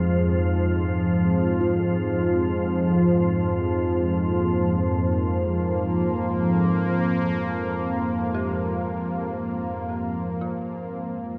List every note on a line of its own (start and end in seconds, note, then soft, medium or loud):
0.00 11.38 F2 medium
0.00 11.38 G#2 medium
0.00 11.38 F3 medium
0.00 4.17 C4 medium
0.00 2.98 G#4 medium
1.61 11.38 F4 medium
3.87 11.38 A#3 medium
8.35 10.62 G4 medium
10.41 11.38 F4 medium